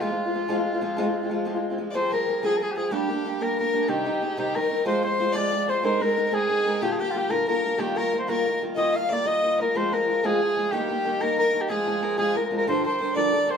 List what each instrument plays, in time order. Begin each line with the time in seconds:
0.00 steel-string acoustic guitar F3 G#3 C4 F4, soprano saxophone F4, fiddle F4
0.10 steel-string acoustic guitar G#3 C4 F4
0.26 steel-string acoustic guitar G#3 C4 F4
0.34 steel-string acoustic guitar F3 G#3 C4 F4
0.48 steel-string acoustic guitar F3 G#3 C4 F4
0.57 steel-string acoustic guitar G#3 C4 F4
0.73 steel-string acoustic guitar G#3 C4 F4
0.81 steel-string acoustic guitar F3 G#3 C4 F4
0.97 steel-string acoustic guitar F3 G#3 C4 F4
1.06 steel-string acoustic guitar G#3 C4 F4
1.22 steel-string acoustic guitar G#3 C4 F4
1.29 steel-string acoustic guitar F3 G#3 C4 F4
1.45 steel-string acoustic guitar F3 G#3 C4 F4
1.54 steel-string acoustic guitar G#3 C4 F4
1.70 steel-string acoustic guitar G#3 C4 F4
1.78 steel-string acoustic guitar F3 G#3 C4 F4
1.90 steel-string acoustic guitar F3 G3, fiddle D5
1.95 steel-string acoustic guitar C4 G#4, fiddle C5, soprano saxophone C5
2.11 steel-string acoustic guitar F3 G3 C4 G#4, fiddle A#4, soprano saxophone A#4
2.27 steel-string acoustic guitar F3 G3 C4 G#4
2.43 steel-string acoustic guitar F3 G3 C4 G#4, fiddle G#4, soprano saxophone G#4
2.57 steel-string acoustic guitar F3, soprano saxophone A#4
2.61 steel-string acoustic guitar G3 C4 G#4, fiddle G#4, soprano saxophone G#4
2.72 soprano saxophone G4
2.76 steel-string acoustic guitar F3 G3 C4 G#4, fiddle G#4, soprano saxophone G#4
2.85 soprano saxophone G#4
2.91 steel-string acoustic guitar G3 A#3 D4 G4, fiddle G4, soprano saxophone G4
3.09 steel-string acoustic guitar G3 A#3 D4 G4
3.24 steel-string acoustic guitar G3 A#3 D4 G4
3.40 steel-string acoustic guitar G3 A#3 D4 G4, fiddle A#4, soprano saxophone A#4
3.58 steel-string acoustic guitar G3 A#3 D4 G4, fiddle A#4, soprano saxophone A#4
3.72 steel-string acoustic guitar G3 A#3 D4 G4
3.82 fiddle G#4
3.88 steel-string acoustic guitar C3 D#3 G3 C4 D#4, fiddle G4, soprano saxophone G4
4.04 steel-string acoustic guitar D#3 G3 C4 D#4
4.21 steel-string acoustic guitar D#3 G3 C4 D#4, fiddle G#4
4.37 steel-string acoustic guitar C3 D#3 G3 C4 D#4, fiddle G4, soprano saxophone G4
4.54 steel-string acoustic guitar D#3 G3 C4 D#4, fiddle A#4, soprano saxophone A#4
4.69 steel-string acoustic guitar D#3 G3 C4 D#4
4.85 steel-string acoustic guitar F3 G#3 C4 F4, fiddle C5, soprano saxophone C5
5.03 steel-string acoustic guitar F3 G#3 C4 F4, soprano saxophone C5, fiddle C5
5.18 steel-string acoustic guitar F3 G#3 C4 F4
5.32 steel-string acoustic guitar F3 G#3 C4 F4, fiddle D5, soprano saxophone D5
5.51 steel-string acoustic guitar F3 G#3 C4 F4
5.67 steel-string acoustic guitar F3 G#3 C4 F4, fiddle C5, soprano saxophone C5
5.83 steel-string acoustic guitar G#3 C4 D#4 A#4, fiddle C5, soprano saxophone C5
6.00 steel-string acoustic guitar G#3 C4 D#4 A#4, fiddle A#4, soprano saxophone A#4
6.16 steel-string acoustic guitar G#3 C4 D#4 A#4
6.26 fiddle A#4
6.31 steel-string acoustic guitar G#3 C4 D#4 A#4, fiddle G#4, soprano saxophone G#4
6.49 steel-string acoustic guitar G#3 C4 D#4 A#4
6.65 steel-string acoustic guitar G#3 C4 D#4 A#4
6.81 steel-string acoustic guitar A#2 D3 G3 A#3 F4, fiddle G4, soprano saxophone G4
6.93 soprano saxophone G#4
6.99 steel-string acoustic guitar D3 G3 A#3 F4, fiddle G4, soprano saxophone G4
7.10 steel-string acoustic guitar D3, soprano saxophone F4
7.14 steel-string acoustic guitar G3 A#3 F4, soprano saxophone G4
7.29 steel-string acoustic guitar A#2 D3 G3 A#3 F4, fiddle A#4, soprano saxophone A#4
7.47 steel-string acoustic guitar D3 G3 A#3 F4, fiddle A#4, soprano saxophone A#4
7.63 steel-string acoustic guitar D3 G3 A#3 F4
7.78 steel-string acoustic guitar D#3 G3 A#3 F4, fiddle G4, soprano saxophone G4
7.95 steel-string acoustic guitar D#3 G3 A#3 F4, fiddle A#4, soprano saxophone A#4
8.12 steel-string acoustic guitar D#3 G3 A#3 F4
8.19 soprano saxophone C5
8.28 steel-string acoustic guitar D#3 G3 A#3 F4, fiddle A#4, soprano saxophone A#4
8.46 steel-string acoustic guitar D#3 G3 A#3 F4
8.61 steel-string acoustic guitar D#3 G3 A#3 F4
8.76 steel-string acoustic guitar D#3 G3 A#3 F4, fiddle D#5, soprano saxophone D#5
8.93 steel-string acoustic guitar D#3 G3 A#3 F4, fiddle F5, soprano saxophone F5
9.09 steel-string acoustic guitar D#3 G3 A#3 F4, fiddle D5, soprano saxophone D5
9.25 steel-string acoustic guitar D#3 G3 A#3 F4, fiddle D#5, soprano saxophone D#5
9.42 steel-string acoustic guitar D#3 G3 A#3 F4
9.59 steel-string acoustic guitar D#3 G3 A#3 F4, fiddle A#4, soprano saxophone A#4
9.75 steel-string acoustic guitar F3 G#3 C4 F4, fiddle C5, soprano saxophone C5
9.92 steel-string acoustic guitar F3 G#3 C4 F4, fiddle A#4, soprano saxophone A#4
10.07 steel-string acoustic guitar F3 G#3 C4 F4, fiddle A#4
10.23 steel-string acoustic guitar F3 G#3 C4 F4, fiddle G#4, soprano saxophone G#4
10.40 steel-string acoustic guitar F3 C4 F4
10.56 steel-string acoustic guitar F3 G#3 C4 F4
10.71 steel-string acoustic guitar D#3 G3 A#3 D#4, fiddle G4, soprano saxophone G4
10.88 steel-string acoustic guitar D#3 G3 A#3 D#4
11.05 steel-string acoustic guitar D#3 G3 A#3 D#4
11.20 steel-string acoustic guitar D#3 G3 A#3 D#4, fiddle A#4, soprano saxophone A#4
11.37 steel-string acoustic guitar D#3 G3 A#3 D#4, fiddle A#4, soprano saxophone A#4
11.53 steel-string acoustic guitar D#3 G3 A#3 D#4
11.61 soprano saxophone G4
11.69 steel-string acoustic guitar F3 G#3 C4 F4, fiddle G#4, soprano saxophone G#4
11.86 steel-string acoustic guitar F3 G#3 C4 F4
12.01 steel-string acoustic guitar F3 G#3 C4 F4, fiddle A#4
12.17 steel-string acoustic guitar F3 G#3 C4 F4, soprano saxophone G#4, fiddle G#4
12.34 steel-string acoustic guitar F3 G#3 C4 F4, fiddle A#4, soprano saxophone A#4
12.45 soprano saxophone A#4
12.50 steel-string acoustic guitar F3 G#3 C4 F4
12.57 soprano saxophone A#4, fiddle A#4
12.67 steel-string acoustic guitar G2 D3 F3 G3 D4 A#4, soprano saxophone C5, fiddle C5
12.84 steel-string acoustic guitar D3 G3 D4 A#4, soprano saxophone C5, fiddle C5
12.99 steel-string acoustic guitar D3 G3 D4 A#4, fiddle C5
13.14 steel-string acoustic guitar G2 D3 F3 G3 D4 A#4, fiddle D5, soprano saxophone D5
13.32 steel-string acoustic guitar D3 G3 D4 A#4
13.47 steel-string acoustic guitar D3 G3 D4 A#4, fiddle C5, soprano saxophone C5